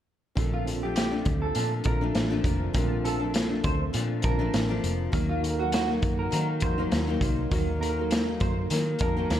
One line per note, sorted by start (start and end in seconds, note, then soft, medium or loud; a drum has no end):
0.35 1.22 A#1 medium
0.35 0.82 A#2 medium
0.35 0.83 F3 medium
0.35 0.83 A3 medium
0.35 0.64 C4 medium
0.35 0.65 D4 medium
0.35 0.80 D4 medium
0.35 0.65 F4 medium
0.35 0.66 A4 medium
0.35 kick medium
0.35 closed hi-hat medium
0.54 0.66 F4 medium
0.65 1.79 C4 medium
0.65 1.79 D4 medium
0.65 1.80 F4 medium
0.65 1.80 A4 medium
0.65 closed hi-hat medium
0.82 1.14 F3 soft
0.82 1.13 A3 soft
0.82 1.10 D4 soft
0.82 0.95 G4 medium
0.96 1.12 G4 medium
0.96 snare loud
0.96 closed hi-hat medium
1.12 1.55 F3 soft
1.12 1.56 A3 soft
1.12 1.55 D4 medium
1.25 1.50 D2 medium
1.25 kick medium
1.25 closed hi-hat medium
1.42 1.70 A4 medium
1.55 2.02 A#2 medium
1.55 1.80 A#2 medium
1.55 2.01 F3 medium
1.55 2.01 A3 medium
1.55 closed hi-hat medium
1.59 2.00 D4 medium
1.84 2.10 A#1 medium
1.84 2.70 C4 medium
1.84 2.70 D4 medium
1.84 2.71 F4 medium
1.84 2.71 A4 medium
1.84 2.01 A#4 medium
1.84 kick medium
1.84 closed hi-hat medium
2.01 2.32 A#2 medium
2.01 2.31 F3 medium
2.01 2.30 A3 medium
2.01 2.29 D4 medium
2.15 2.39 A1 medium
2.15 snare medium
2.15 closed hi-hat medium
2.31 2.72 A#2 medium
2.31 2.74 F3 medium
2.31 2.75 A3 medium
2.31 2.74 D4 medium
2.44 2.69 F1 medium
2.44 kick medium
2.44 closed hi-hat medium
2.73 3.60 A#1 medium
2.73 3.20 A#2 medium
2.73 3.21 F3 medium
2.73 3.21 A3 medium
2.73 3.02 C4 medium
2.73 3.03 D4 medium
2.73 3.18 D4 medium
2.73 3.04 F4 medium
2.73 3.04 A#4 medium
2.73 kick medium
2.73 closed hi-hat medium
3.03 4.17 C4 medium
3.03 4.17 D4 medium
3.03 4.18 F4 medium
3.03 3.20 A4 medium
3.03 4.18 A4 medium
3.03 closed hi-hat medium
3.20 3.52 F3 soft
3.20 3.51 A3 soft
3.20 3.49 D4 medium
3.34 snare medium
3.34 closed hi-hat medium
3.50 3.93 F3 soft
3.50 3.95 A3 soft
3.50 3.94 D4 soft
3.64 3.88 D2 medium
3.64 3.80 C5 medium
3.64 kick medium
3.64 closed hi-hat medium
3.93 4.40 A#2 medium
3.93 4.26 A#2 medium
3.93 4.40 F3 medium
3.93 4.38 A3 medium
3.93 4.38 D4 medium
3.93 closed hi-hat medium
4.22 4.48 A#1 medium
4.22 5.08 C4 medium
4.22 5.08 D4 medium
4.22 5.09 F4 medium
4.22 4.67 A#4 medium
4.22 5.09 A5 medium
4.22 kick medium
4.22 closed hi-hat medium
4.39 4.70 A#2 medium
4.39 4.69 F3 medium
4.39 4.68 A3 medium
4.39 4.67 D4 medium
4.54 4.78 A1 medium
4.54 snare loud
4.54 closed hi-hat medium
4.69 5.11 A#2 medium
4.69 5.13 F3 medium
4.69 5.13 A3 medium
4.69 5.13 D4 medium
4.84 5.07 F1 medium
4.84 closed hi-hat medium
5.12 5.99 D#2 loud
5.12 5.59 D#3 medium
5.12 5.59 F#3 medium
5.12 5.40 A#3 medium
5.12 5.59 A#3 medium
5.12 5.41 D#4 medium
5.12 5.57 D#4 medium
5.12 5.42 F#4 medium
5.12 5.42 A#4 medium
5.12 kick medium
5.12 closed hi-hat medium
5.29 5.42 F4 medium
5.42 6.55 A#3 medium
5.42 6.56 D#4 medium
5.42 6.56 F#4 medium
5.42 5.51 A4 medium
5.42 closed hi-hat medium
5.51 6.60 A#4 medium
5.58 5.90 F#3 soft
5.58 5.88 A#3 soft
5.58 5.86 D#4 soft
5.58 5.71 F#4 medium
5.72 5.88 F#4 medium
5.72 snare loud
5.72 closed hi-hat medium
5.87 6.31 F#3 soft
5.87 6.32 A#3 soft
5.87 6.32 D#4 medium
6.02 6.27 F#2 medium
6.02 kick medium
6.02 closed hi-hat medium
6.19 6.47 A#4 medium
6.31 6.78 D#3 medium
6.31 6.64 D#3 medium
6.31 6.78 F#3 medium
6.31 6.77 A#3 medium
6.31 6.76 D#4 medium
6.31 closed hi-hat medium
6.60 6.86 F2 medium
6.60 7.46 A#3 medium
6.60 7.47 D#4 medium
6.60 7.47 F#4 medium
6.60 7.48 A#4 medium
6.60 6.78 C5 medium
6.60 kick medium
6.60 closed hi-hat medium
6.78 7.09 D#3 medium
6.78 7.09 F#3 medium
6.78 7.08 A#3 medium
6.78 7.06 D#4 medium
6.92 7.16 D#2 medium
6.92 snare medium
6.92 closed hi-hat medium
7.08 7.50 D#3 medium
7.08 7.51 F#3 medium
7.08 7.52 A#3 medium
7.08 7.51 D#4 medium
7.21 7.45 C2 medium
7.21 kick medium
7.21 closed hi-hat medium
7.50 8.37 D#2 medium
7.50 7.98 D#3 medium
7.50 7.98 F#3 medium
7.50 7.79 A#3 medium
7.50 7.98 A#3 medium
7.50 7.80 D#4 medium
7.50 7.80 F#4 medium
7.50 7.81 A#4 medium
7.50 kick medium
7.50 closed hi-hat medium
7.55 7.96 D#4 medium
7.80 8.94 A#3 medium
7.80 8.94 D#4 medium
7.80 8.95 F#4 medium
7.80 7.89 A4 medium
7.80 7.97 A#4 medium
7.80 closed hi-hat medium
7.89 8.99 A#4 medium
7.97 8.29 F#3 soft
7.97 8.27 A#3 soft
7.97 8.25 D#4 soft
8.11 snare loud
8.11 closed hi-hat medium
8.26 8.71 A#3 soft
8.26 8.70 D#4 medium
8.30 8.70 F#3 soft
8.40 8.65 F#2 medium
8.40 8.57 C5 medium
8.40 kick medium
8.40 closed hi-hat medium
8.70 9.17 D#3 medium
8.70 8.95 D#3 medium
8.70 9.17 F#3 medium
8.70 9.16 A#3 medium
8.70 9.15 D#4 medium
8.70 snare soft
8.70 closed hi-hat medium
8.99 9.25 F2 medium
8.99 9.40 A#3 medium
8.99 9.40 D#4 medium
8.99 9.40 F#4 medium
8.99 9.40 A#4 medium
8.99 9.40 A5 medium
8.99 kick medium
8.99 closed hi-hat medium
9.17 9.40 D#3 medium
9.17 9.40 F#3 medium
9.17 9.40 A#3 medium
9.17 9.40 D#4 medium
9.30 9.40 D#2 medium
9.30 snare medium
9.30 closed hi-hat medium